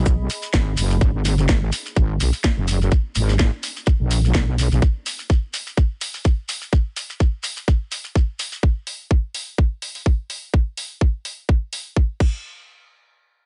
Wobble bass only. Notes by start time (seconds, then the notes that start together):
Already playing: B1
0.54 G#1
0.77 F#1
1.01 G#1
1.49 G#1
1.96 G#1
2.20 B1
2.57 F#1
3.15 G#1
4.00 A#1
4.35 B1
4.71 A#1